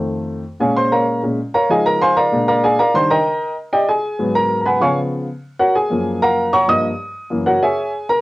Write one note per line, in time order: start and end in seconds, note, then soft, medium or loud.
0.00 0.42 F2 medium
0.00 0.42 D#3 soft
0.00 0.42 A3 medium
0.60 1.21 A#2 medium
0.60 1.22 G#3 medium
0.60 1.22 C#4 medium
0.60 0.76 G#4 medium
0.60 0.76 C#5 medium
0.60 0.76 F5 medium
0.60 0.76 G#5 medium
0.76 0.92 C5 medium
0.76 0.91 C6 loud
0.92 1.21 A#4 medium
0.92 1.21 C#5 medium
0.92 1.21 F5 medium
0.92 1.21 A#5 medium
1.23 1.37 A#2 soft
1.23 1.37 G#3 soft
1.23 1.37 C#4 medium
1.54 1.70 A#4 medium
1.54 1.69 C#5 medium
1.54 1.69 F5 medium
1.54 1.69 A#5 medium
1.69 2.29 F3 medium
1.69 2.29 G#3 soft
1.69 2.30 D#4 medium
1.69 1.85 G#4 medium
1.69 1.85 D#5 medium
1.69 1.85 F5 medium
1.69 1.85 G#5 medium
1.86 2.01 A#4 medium
1.86 2.01 A#5 loud
2.01 2.17 C5 medium
2.01 2.15 F5 medium
2.01 2.17 G#5 medium
2.01 2.16 C6 loud
2.17 2.47 A#4 medium
2.17 2.47 D5 medium
2.17 2.47 F5 medium
2.17 2.46 A#5 medium
2.32 2.76 A#2 medium
2.32 2.77 G#3 soft
2.32 2.77 D4 medium
2.48 2.63 A#4 medium
2.48 2.63 D5 medium
2.48 2.63 F5 medium
2.48 2.63 A#5 loud
2.64 2.79 G#4 medium
2.64 2.78 D5 medium
2.64 2.78 F5 medium
2.64 2.79 G#5 medium
2.79 2.94 A#4 medium
2.79 2.94 D5 medium
2.79 2.94 F5 medium
2.79 2.94 A#5 loud
2.94 3.15 D#3 medium
2.94 3.15 G3 soft
2.94 3.16 D4 medium
2.94 3.10 C5 medium
2.94 3.10 C6 loud
3.10 3.54 A#4 medium
3.10 3.54 D#5 medium
3.10 3.54 G5 medium
3.10 3.54 A#5 loud
3.73 3.88 G4 medium
3.73 3.88 D5 medium
3.73 3.88 D#5 medium
3.73 3.88 G5 medium
3.89 4.32 G#4 medium
3.89 4.32 G#5 medium
4.19 4.78 G#2 medium
4.19 4.79 F#3 medium
4.19 4.79 B3 medium
4.35 4.64 A#4 medium
4.35 4.60 A#5 loud
4.61 4.64 A#5 medium
4.66 4.81 B4 medium
4.66 4.81 F#5 medium
4.66 4.81 G#5 medium
4.66 4.81 B5 medium
4.81 5.26 C#3 medium
4.81 5.26 F3 soft
4.81 5.26 B3 medium
4.81 4.97 C#5 medium
4.81 4.97 F5 medium
4.81 4.97 G#5 medium
4.81 4.97 C#6 medium
5.60 5.75 F#4 medium
5.60 5.75 A#4 medium
5.60 5.75 C#5 medium
5.60 5.75 F#5 medium
5.75 6.19 G#4 medium
5.75 6.19 G#5 medium
5.90 6.64 F#2 soft
5.90 6.65 F3 soft
5.90 6.65 A#3 medium
6.22 6.51 A#4 medium
6.22 6.51 F5 medium
6.22 6.51 F#5 medium
6.22 6.51 A#5 loud
6.53 6.68 C#5 medium
6.53 6.68 F#5 medium
6.53 6.68 A#5 medium
6.53 6.68 C#6 loud
6.68 6.89 G2 medium
6.68 6.89 F3 medium
6.68 6.90 A#3 medium
6.68 6.84 D#5 medium
6.68 6.84 D#6 loud
7.30 7.51 F#2 medium
7.30 7.52 E3 soft
7.30 7.52 A#3 medium
7.46 7.62 F#4 medium
7.46 7.62 A#4 medium
7.46 7.61 C#5 medium
7.46 7.61 F#5 medium
7.63 8.06 G#4 medium
7.63 7.91 C#5 medium
7.63 7.91 E5 medium
7.63 8.06 G#5 medium
8.09 8.21 A#4 medium
8.09 8.21 A#5 loud